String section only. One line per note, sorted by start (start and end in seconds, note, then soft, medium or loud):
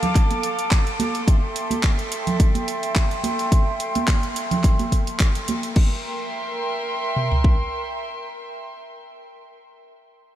0.00 5.73 A4 medium
0.00 1.24 F5 medium
0.00 1.26 A5 medium
0.00 1.24 D6 medium
1.27 5.72 E5 medium
1.27 5.72 G5 medium
1.27 5.72 C6 medium
5.76 8.76 A#4 medium
5.76 8.76 E5 medium
5.76 8.76 G5 medium
5.76 8.76 C6 medium